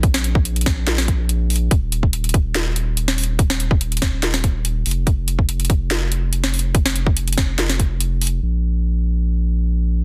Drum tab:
HH |x---x---x-xxx---x---x---x---ox--|x---x---x-xxx---x---x---x---ox--|x---x---x-xxx---x---x---x---ox--|x---x---x-xxx---x---x---x---ox--|
SD |--o---------o---o-o-------------|----------------o---------o-----|--o---------o---o-o-------------|----------------o---------o-----|
BD |o-----o-----o-------o-----------|o-----o-----o-------------------|o-----o-----o-------o-----------|o-----o-----o-------------------|

HH |x---x---x-xxx---x---x---x---ox--|--------------------------------|
SD |--o---------o---o-o-------------|--------------------------------|
BD |o-----o-----o-------o-----------|--------------------------------|